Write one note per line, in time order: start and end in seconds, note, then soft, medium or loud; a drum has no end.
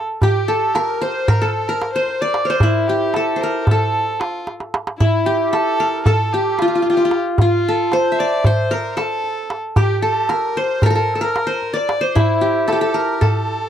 0.00 0.48 A4 medium
0.22 0.52 G4 medium
0.22 1.49 G4 medium
0.22 darbuka dum medium
0.48 0.81 A4 medium
0.48 0.78 A4 medium
0.48 darbuka ka soft
0.75 1.28 A#4 loud
0.75 1.04 A#4 medium
0.75 darbuka tek medium
1.01 1.95 C5 medium
1.01 1.31 C5 medium
1.01 darbuka ka soft
1.28 1.48 A#4 medium
1.28 1.44 A#4 medium
1.28 darbuka dum medium
1.42 1.75 A4 medium
1.42 1.69 A4 medium
1.68 1.93 A#4 medium
1.68 2.45 A#4 medium
1.82 darbuka tek medium
1.93 2.23 C5 medium
1.93 2.49 C5 medium
2.08 darbuka ka soft
2.21 2.48 D5 medium
2.21 3.20 D5 medium
2.34 darbuka tek medium
2.45 3.22 A#4 medium
2.45 2.51 C5 medium
2.50 3.36 C5 medium
2.50 2.62 C5 medium
2.50 2.55 D5 medium
2.60 2.89 E4 medium
2.60 4.02 E4 medium
2.60 darbuka dum medium
2.88 3.15 G4 medium
2.88 4.15 G4 medium
3.14 3.42 A4 medium
3.14 3.49 A4 medium
3.14 darbuka tek medium
3.36 4.42 C5 medium
3.41 3.61 A#4 medium
3.41 3.77 A#4 medium
3.41 darbuka ka soft
3.61 3.67 A#4 medium
3.66 4.22 A4 medium
3.66 darbuka dum medium
3.71 4.88 A4 medium
3.94 darbuka ka soft
4.20 4.47 F4 medium
4.20 darbuka tek medium
4.47 darbuka tek medium
4.60 darbuka ka medium
4.74 darbuka tek medium
4.87 darbuka ka medium
4.99 5.28 E4 medium
4.99 6.40 E4 medium
4.99 darbuka dum medium
5.26 5.53 G4 medium
5.26 6.33 G4 medium
5.53 5.86 A4 medium
5.53 6.03 A4 medium
5.53 darbuka tek medium
5.79 6.12 A#4 medium
5.79 darbuka ka soft
6.05 6.35 A4 medium
6.05 7.24 A4 medium
6.05 darbuka dum medium
6.19 darbuka ka soft
6.33 6.60 G4 medium
6.33 7.60 G4 medium
6.59 6.92 F4 medium
6.59 6.67 F4 medium
6.59 darbuka tek medium
6.68 6.75 F4 medium
6.75 6.82 F4 medium
6.82 6.89 F4 medium
6.82 darbuka ka soft
6.90 6.97 F4 medium
6.90 7.17 G4 medium
6.97 7.05 F4 medium
7.05 7.41 F4 medium
7.11 darbuka tek medium
7.38 7.94 F4 medium
7.38 8.18 F4 medium
7.38 darbuka dum medium
7.65 8.77 A4 medium
7.65 darbuka ka soft
7.92 8.21 C5 medium
7.92 8.46 C5 medium
7.92 darbuka tek medium
8.12 9.04 E5 medium
8.19 8.48 D5 medium
8.19 9.19 D5 medium
8.19 darbuka ka soft
8.44 8.75 C5 medium
8.44 9.52 C5 loud
8.44 darbuka dum medium
8.58 darbuka ka soft
8.71 9.03 A#4 medium
8.71 8.93 A#4 medium
8.93 9.00 A#4 medium
8.97 10.02 A4 medium
8.97 9.58 A4 medium
8.97 darbuka tek medium
9.24 darbuka ka soft
9.50 darbuka tek medium
9.76 11.02 G4 medium
9.76 10.02 G4 medium
9.76 darbuka dum medium
10.02 10.35 A4 medium
10.02 10.33 A4 medium
10.29 10.82 A#4 medium
10.29 10.59 A#4 medium
10.29 darbuka tek medium
10.56 11.46 C5 medium
10.56 10.85 C5 medium
10.56 darbuka ka soft
10.82 10.95 A4 medium
10.82 10.90 A#4 medium
10.82 10.89 A#4 medium
10.82 darbuka dum medium
10.90 11.21 A#4 medium
10.90 11.01 A#4 medium
10.95 11.15 A4 medium
10.95 darbuka ka soft
11.15 11.27 A4 medium
11.21 12.34 A#4 medium
11.21 11.78 A#4 medium
11.36 darbuka tek medium
11.47 12.01 C5 medium
11.62 darbuka ka soft
11.73 12.72 D5 medium
11.73 12.05 D5 medium
11.89 darbuka tek medium
12.01 13.07 C5 medium
12.01 12.19 C5 medium
12.15 13.55 E4 medium
12.15 12.68 E4 medium
12.15 darbuka dum medium
12.41 12.72 G4 medium
12.68 12.81 A4 medium
12.68 darbuka tek medium
12.72 13.69 G4 medium
12.81 13.00 A4 medium
12.81 12.97 A4 medium
12.94 13.27 A#4 medium
12.94 13.23 A#4 medium
12.94 darbuka ka soft
13.21 13.69 A4 medium
13.21 darbuka dum medium
13.35 darbuka ka soft
13.48 darbuka ka soft